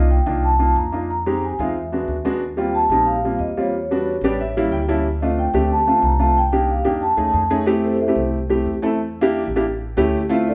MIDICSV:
0, 0, Header, 1, 4, 480
1, 0, Start_track
1, 0, Tempo, 328767
1, 1593, Time_signature, 4, 2, 24, 8
1, 15393, End_track
2, 0, Start_track
2, 0, Title_t, "Vibraphone"
2, 0, Program_c, 0, 11
2, 154, Note_on_c, 0, 79, 93
2, 642, Note_on_c, 0, 81, 96
2, 647, Note_off_c, 0, 79, 0
2, 1085, Note_off_c, 0, 81, 0
2, 1126, Note_on_c, 0, 82, 97
2, 1595, Note_off_c, 0, 82, 0
2, 1612, Note_on_c, 0, 82, 110
2, 2099, Note_off_c, 0, 82, 0
2, 2104, Note_on_c, 0, 80, 92
2, 2337, Note_off_c, 0, 80, 0
2, 2356, Note_on_c, 0, 76, 74
2, 3241, Note_off_c, 0, 76, 0
2, 3775, Note_on_c, 0, 79, 86
2, 4009, Note_on_c, 0, 81, 98
2, 4015, Note_off_c, 0, 79, 0
2, 4453, Note_off_c, 0, 81, 0
2, 4460, Note_on_c, 0, 77, 97
2, 4918, Note_off_c, 0, 77, 0
2, 4962, Note_on_c, 0, 75, 83
2, 5070, Note_off_c, 0, 75, 0
2, 5216, Note_on_c, 0, 73, 76
2, 6594, Note_off_c, 0, 73, 0
2, 7609, Note_on_c, 0, 75, 79
2, 7855, Note_off_c, 0, 75, 0
2, 7867, Note_on_c, 0, 79, 96
2, 8304, Note_off_c, 0, 79, 0
2, 8348, Note_on_c, 0, 81, 106
2, 8823, Note_on_c, 0, 82, 99
2, 8831, Note_off_c, 0, 81, 0
2, 9058, Note_on_c, 0, 81, 95
2, 9061, Note_off_c, 0, 82, 0
2, 9299, Note_off_c, 0, 81, 0
2, 9311, Note_on_c, 0, 79, 107
2, 9539, Note_off_c, 0, 79, 0
2, 9556, Note_on_c, 0, 79, 85
2, 9765, Note_off_c, 0, 79, 0
2, 9786, Note_on_c, 0, 77, 88
2, 10012, Note_on_c, 0, 79, 86
2, 10022, Note_off_c, 0, 77, 0
2, 10246, Note_on_c, 0, 81, 83
2, 10255, Note_off_c, 0, 79, 0
2, 10913, Note_off_c, 0, 81, 0
2, 11450, Note_on_c, 0, 67, 65
2, 11453, Note_on_c, 0, 72, 78
2, 11457, Note_on_c, 0, 69, 64
2, 11460, Note_on_c, 0, 60, 66
2, 11672, Note_off_c, 0, 72, 0
2, 11673, Note_off_c, 0, 69, 0
2, 11678, Note_off_c, 0, 67, 0
2, 11683, Note_off_c, 0, 60, 0
2, 11690, Note_on_c, 0, 72, 73
2, 11691, Note_on_c, 0, 69, 74
2, 11692, Note_on_c, 0, 76, 86
2, 11699, Note_on_c, 0, 64, 72
2, 11918, Note_off_c, 0, 69, 0
2, 11918, Note_off_c, 0, 72, 0
2, 11919, Note_off_c, 0, 76, 0
2, 11922, Note_off_c, 0, 64, 0
2, 15283, Note_on_c, 0, 62, 69
2, 15286, Note_on_c, 0, 69, 64
2, 15292, Note_on_c, 0, 74, 85
2, 15293, Note_on_c, 0, 65, 67
2, 15393, Note_off_c, 0, 62, 0
2, 15393, Note_off_c, 0, 65, 0
2, 15393, Note_off_c, 0, 69, 0
2, 15393, Note_off_c, 0, 74, 0
2, 15393, End_track
3, 0, Start_track
3, 0, Title_t, "Grand piano"
3, 0, Program_c, 1, 0
3, 0, Note_on_c, 1, 58, 79
3, 0, Note_on_c, 1, 62, 71
3, 0, Note_on_c, 1, 63, 73
3, 0, Note_on_c, 1, 65, 88
3, 237, Note_off_c, 1, 58, 0
3, 237, Note_off_c, 1, 62, 0
3, 240, Note_off_c, 1, 63, 0
3, 241, Note_off_c, 1, 65, 0
3, 381, Note_on_c, 1, 58, 74
3, 390, Note_on_c, 1, 63, 67
3, 391, Note_on_c, 1, 65, 78
3, 392, Note_on_c, 1, 62, 74
3, 722, Note_off_c, 1, 58, 0
3, 727, Note_off_c, 1, 63, 0
3, 727, Note_off_c, 1, 65, 0
3, 728, Note_off_c, 1, 62, 0
3, 862, Note_on_c, 1, 62, 63
3, 865, Note_on_c, 1, 58, 74
3, 871, Note_on_c, 1, 63, 66
3, 871, Note_on_c, 1, 65, 79
3, 1204, Note_off_c, 1, 62, 0
3, 1205, Note_off_c, 1, 58, 0
3, 1208, Note_off_c, 1, 63, 0
3, 1208, Note_off_c, 1, 65, 0
3, 1347, Note_on_c, 1, 58, 71
3, 1358, Note_on_c, 1, 62, 68
3, 1361, Note_on_c, 1, 63, 65
3, 1367, Note_on_c, 1, 65, 74
3, 1591, Note_off_c, 1, 58, 0
3, 1596, Note_off_c, 1, 62, 0
3, 1598, Note_off_c, 1, 63, 0
3, 1600, Note_off_c, 1, 65, 0
3, 1843, Note_on_c, 1, 60, 70
3, 1845, Note_on_c, 1, 56, 77
3, 1854, Note_on_c, 1, 63, 66
3, 1854, Note_on_c, 1, 67, 80
3, 2176, Note_off_c, 1, 60, 0
3, 2177, Note_off_c, 1, 56, 0
3, 2181, Note_off_c, 1, 63, 0
3, 2182, Note_off_c, 1, 67, 0
3, 2334, Note_on_c, 1, 60, 69
3, 2336, Note_on_c, 1, 56, 78
3, 2338, Note_on_c, 1, 63, 64
3, 2341, Note_on_c, 1, 65, 81
3, 2566, Note_off_c, 1, 60, 0
3, 2567, Note_off_c, 1, 56, 0
3, 2568, Note_off_c, 1, 63, 0
3, 2569, Note_off_c, 1, 65, 0
3, 2807, Note_on_c, 1, 56, 71
3, 2812, Note_on_c, 1, 59, 62
3, 2817, Note_on_c, 1, 62, 64
3, 2817, Note_on_c, 1, 66, 76
3, 3139, Note_off_c, 1, 56, 0
3, 3142, Note_off_c, 1, 59, 0
3, 3144, Note_off_c, 1, 62, 0
3, 3144, Note_off_c, 1, 66, 0
3, 3281, Note_on_c, 1, 59, 75
3, 3283, Note_on_c, 1, 56, 81
3, 3285, Note_on_c, 1, 62, 76
3, 3294, Note_on_c, 1, 66, 93
3, 3521, Note_off_c, 1, 56, 0
3, 3521, Note_off_c, 1, 59, 0
3, 3523, Note_off_c, 1, 62, 0
3, 3527, Note_off_c, 1, 66, 0
3, 3752, Note_on_c, 1, 55, 78
3, 3759, Note_on_c, 1, 58, 66
3, 3761, Note_on_c, 1, 60, 67
3, 3767, Note_on_c, 1, 65, 88
3, 4093, Note_off_c, 1, 55, 0
3, 4096, Note_off_c, 1, 58, 0
3, 4098, Note_off_c, 1, 60, 0
3, 4101, Note_off_c, 1, 65, 0
3, 4253, Note_on_c, 1, 55, 77
3, 4255, Note_on_c, 1, 58, 71
3, 4259, Note_on_c, 1, 60, 69
3, 4266, Note_on_c, 1, 63, 85
3, 4584, Note_off_c, 1, 55, 0
3, 4585, Note_off_c, 1, 58, 0
3, 4587, Note_off_c, 1, 60, 0
3, 4591, Note_off_c, 1, 63, 0
3, 4739, Note_on_c, 1, 55, 66
3, 4740, Note_on_c, 1, 60, 66
3, 4744, Note_on_c, 1, 58, 70
3, 4745, Note_on_c, 1, 65, 73
3, 5068, Note_off_c, 1, 55, 0
3, 5068, Note_off_c, 1, 60, 0
3, 5070, Note_off_c, 1, 58, 0
3, 5071, Note_off_c, 1, 65, 0
3, 5217, Note_on_c, 1, 58, 69
3, 5218, Note_on_c, 1, 55, 74
3, 5220, Note_on_c, 1, 60, 67
3, 5225, Note_on_c, 1, 65, 81
3, 5451, Note_off_c, 1, 58, 0
3, 5452, Note_off_c, 1, 55, 0
3, 5452, Note_off_c, 1, 60, 0
3, 5455, Note_off_c, 1, 65, 0
3, 5708, Note_on_c, 1, 55, 75
3, 5711, Note_on_c, 1, 62, 69
3, 5713, Note_on_c, 1, 59, 70
3, 5722, Note_on_c, 1, 66, 86
3, 6033, Note_off_c, 1, 55, 0
3, 6034, Note_off_c, 1, 62, 0
3, 6035, Note_off_c, 1, 59, 0
3, 6040, Note_off_c, 1, 66, 0
3, 6188, Note_on_c, 1, 55, 90
3, 6189, Note_on_c, 1, 59, 81
3, 6196, Note_on_c, 1, 62, 82
3, 6197, Note_on_c, 1, 67, 98
3, 6198, Note_on_c, 1, 74, 73
3, 6406, Note_off_c, 1, 74, 0
3, 6417, Note_off_c, 1, 55, 0
3, 6418, Note_off_c, 1, 59, 0
3, 6421, Note_off_c, 1, 62, 0
3, 6421, Note_off_c, 1, 67, 0
3, 6432, Note_on_c, 1, 76, 75
3, 6643, Note_off_c, 1, 76, 0
3, 6671, Note_on_c, 1, 55, 90
3, 6671, Note_on_c, 1, 77, 68
3, 6674, Note_on_c, 1, 58, 79
3, 6675, Note_on_c, 1, 61, 80
3, 6680, Note_on_c, 1, 64, 94
3, 6883, Note_off_c, 1, 77, 0
3, 6892, Note_on_c, 1, 79, 71
3, 6995, Note_off_c, 1, 55, 0
3, 6996, Note_off_c, 1, 58, 0
3, 6997, Note_off_c, 1, 61, 0
3, 6999, Note_off_c, 1, 64, 0
3, 7113, Note_off_c, 1, 79, 0
3, 7129, Note_on_c, 1, 55, 87
3, 7131, Note_on_c, 1, 58, 82
3, 7132, Note_on_c, 1, 81, 72
3, 7135, Note_on_c, 1, 61, 80
3, 7143, Note_on_c, 1, 64, 97
3, 7353, Note_off_c, 1, 81, 0
3, 7368, Note_off_c, 1, 55, 0
3, 7369, Note_off_c, 1, 58, 0
3, 7371, Note_off_c, 1, 61, 0
3, 7375, Note_off_c, 1, 64, 0
3, 7624, Note_on_c, 1, 60, 69
3, 7626, Note_on_c, 1, 57, 76
3, 7630, Note_on_c, 1, 65, 85
3, 7633, Note_on_c, 1, 62, 73
3, 7952, Note_off_c, 1, 57, 0
3, 7952, Note_off_c, 1, 60, 0
3, 7954, Note_off_c, 1, 65, 0
3, 7956, Note_off_c, 1, 62, 0
3, 8085, Note_on_c, 1, 57, 76
3, 8085, Note_on_c, 1, 60, 70
3, 8096, Note_on_c, 1, 67, 86
3, 8101, Note_on_c, 1, 62, 72
3, 8422, Note_off_c, 1, 57, 0
3, 8422, Note_off_c, 1, 60, 0
3, 8427, Note_off_c, 1, 67, 0
3, 8430, Note_off_c, 1, 62, 0
3, 8569, Note_on_c, 1, 57, 75
3, 8576, Note_on_c, 1, 60, 65
3, 8579, Note_on_c, 1, 62, 66
3, 8580, Note_on_c, 1, 65, 79
3, 8904, Note_off_c, 1, 57, 0
3, 8907, Note_off_c, 1, 60, 0
3, 8908, Note_off_c, 1, 62, 0
3, 8909, Note_off_c, 1, 65, 0
3, 9041, Note_on_c, 1, 57, 72
3, 9043, Note_on_c, 1, 60, 65
3, 9044, Note_on_c, 1, 62, 66
3, 9052, Note_on_c, 1, 65, 85
3, 9283, Note_off_c, 1, 57, 0
3, 9284, Note_off_c, 1, 60, 0
3, 9285, Note_off_c, 1, 62, 0
3, 9289, Note_off_c, 1, 65, 0
3, 9523, Note_on_c, 1, 62, 69
3, 9524, Note_on_c, 1, 58, 75
3, 9534, Note_on_c, 1, 67, 80
3, 9535, Note_on_c, 1, 63, 67
3, 9860, Note_off_c, 1, 58, 0
3, 9860, Note_off_c, 1, 62, 0
3, 9865, Note_off_c, 1, 67, 0
3, 9866, Note_off_c, 1, 63, 0
3, 9993, Note_on_c, 1, 58, 77
3, 10000, Note_on_c, 1, 63, 70
3, 10001, Note_on_c, 1, 67, 79
3, 10002, Note_on_c, 1, 62, 74
3, 10238, Note_off_c, 1, 58, 0
3, 10242, Note_off_c, 1, 63, 0
3, 10242, Note_off_c, 1, 67, 0
3, 10243, Note_off_c, 1, 62, 0
3, 10466, Note_on_c, 1, 57, 69
3, 10471, Note_on_c, 1, 61, 61
3, 10472, Note_on_c, 1, 63, 64
3, 10475, Note_on_c, 1, 68, 79
3, 10810, Note_off_c, 1, 57, 0
3, 10813, Note_off_c, 1, 61, 0
3, 10813, Note_off_c, 1, 63, 0
3, 10815, Note_off_c, 1, 68, 0
3, 10954, Note_on_c, 1, 57, 86
3, 10959, Note_on_c, 1, 68, 94
3, 10962, Note_on_c, 1, 61, 78
3, 10963, Note_on_c, 1, 63, 75
3, 11166, Note_off_c, 1, 57, 0
3, 11187, Note_on_c, 1, 57, 94
3, 11192, Note_on_c, 1, 60, 85
3, 11199, Note_on_c, 1, 67, 101
3, 11200, Note_off_c, 1, 68, 0
3, 11200, Note_on_c, 1, 64, 80
3, 11202, Note_off_c, 1, 61, 0
3, 11202, Note_off_c, 1, 63, 0
3, 11614, Note_off_c, 1, 57, 0
3, 11616, Note_off_c, 1, 60, 0
3, 11619, Note_off_c, 1, 67, 0
3, 11620, Note_off_c, 1, 64, 0
3, 11793, Note_on_c, 1, 57, 77
3, 11796, Note_on_c, 1, 64, 70
3, 11798, Note_on_c, 1, 60, 68
3, 11807, Note_on_c, 1, 67, 79
3, 12215, Note_off_c, 1, 57, 0
3, 12217, Note_off_c, 1, 64, 0
3, 12218, Note_off_c, 1, 60, 0
3, 12223, Note_off_c, 1, 67, 0
3, 12403, Note_on_c, 1, 60, 72
3, 12405, Note_on_c, 1, 57, 77
3, 12407, Note_on_c, 1, 64, 65
3, 12414, Note_on_c, 1, 67, 87
3, 12736, Note_off_c, 1, 60, 0
3, 12737, Note_off_c, 1, 57, 0
3, 12738, Note_off_c, 1, 64, 0
3, 12741, Note_off_c, 1, 67, 0
3, 12883, Note_on_c, 1, 60, 82
3, 12884, Note_on_c, 1, 57, 89
3, 12890, Note_on_c, 1, 64, 84
3, 12896, Note_on_c, 1, 69, 96
3, 13119, Note_off_c, 1, 57, 0
3, 13119, Note_off_c, 1, 60, 0
3, 13123, Note_off_c, 1, 64, 0
3, 13126, Note_off_c, 1, 69, 0
3, 13451, Note_on_c, 1, 58, 92
3, 13459, Note_on_c, 1, 64, 89
3, 13463, Note_on_c, 1, 62, 85
3, 13469, Note_on_c, 1, 67, 102
3, 13797, Note_off_c, 1, 58, 0
3, 13802, Note_off_c, 1, 64, 0
3, 13804, Note_off_c, 1, 62, 0
3, 13807, Note_off_c, 1, 67, 0
3, 13955, Note_on_c, 1, 62, 80
3, 13959, Note_on_c, 1, 58, 81
3, 13959, Note_on_c, 1, 64, 76
3, 13966, Note_on_c, 1, 67, 92
3, 14073, Note_off_c, 1, 62, 0
3, 14075, Note_off_c, 1, 58, 0
3, 14076, Note_off_c, 1, 64, 0
3, 14079, Note_off_c, 1, 67, 0
3, 14554, Note_on_c, 1, 61, 82
3, 14555, Note_on_c, 1, 57, 94
3, 14566, Note_on_c, 1, 64, 89
3, 14566, Note_on_c, 1, 67, 106
3, 14887, Note_off_c, 1, 57, 0
3, 14887, Note_off_c, 1, 61, 0
3, 14892, Note_off_c, 1, 67, 0
3, 14893, Note_off_c, 1, 64, 0
3, 15029, Note_on_c, 1, 57, 96
3, 15034, Note_on_c, 1, 60, 87
3, 15036, Note_on_c, 1, 64, 89
3, 15042, Note_on_c, 1, 65, 109
3, 15393, Note_off_c, 1, 57, 0
3, 15393, Note_off_c, 1, 60, 0
3, 15393, Note_off_c, 1, 64, 0
3, 15393, Note_off_c, 1, 65, 0
3, 15393, End_track
4, 0, Start_track
4, 0, Title_t, "Upright bass"
4, 0, Program_c, 2, 32
4, 0, Note_on_c, 2, 36, 96
4, 297, Note_off_c, 2, 36, 0
4, 386, Note_on_c, 2, 36, 91
4, 1059, Note_off_c, 2, 36, 0
4, 1107, Note_on_c, 2, 41, 92
4, 2231, Note_off_c, 2, 41, 0
4, 2319, Note_on_c, 2, 40, 95
4, 2989, Note_off_c, 2, 40, 0
4, 3033, Note_on_c, 2, 39, 82
4, 4157, Note_off_c, 2, 39, 0
4, 4228, Note_on_c, 2, 34, 90
4, 4905, Note_off_c, 2, 34, 0
4, 4946, Note_on_c, 2, 40, 87
4, 6074, Note_off_c, 2, 40, 0
4, 6149, Note_on_c, 2, 33, 92
4, 6827, Note_off_c, 2, 33, 0
4, 6871, Note_on_c, 2, 38, 88
4, 7997, Note_off_c, 2, 38, 0
4, 8079, Note_on_c, 2, 38, 95
4, 8752, Note_off_c, 2, 38, 0
4, 8790, Note_on_c, 2, 36, 92
4, 9914, Note_off_c, 2, 36, 0
4, 9992, Note_on_c, 2, 41, 92
4, 10443, Note_off_c, 2, 41, 0
4, 10467, Note_on_c, 2, 39, 69
4, 10698, Note_off_c, 2, 39, 0
4, 10706, Note_on_c, 2, 41, 94
4, 11829, Note_off_c, 2, 41, 0
4, 11907, Note_on_c, 2, 36, 92
4, 12581, Note_off_c, 2, 36, 0
4, 12638, Note_on_c, 2, 40, 84
4, 13751, Note_off_c, 2, 40, 0
4, 13829, Note_on_c, 2, 33, 92
4, 14498, Note_off_c, 2, 33, 0
4, 14552, Note_on_c, 2, 38, 91
4, 15393, Note_off_c, 2, 38, 0
4, 15393, End_track
0, 0, End_of_file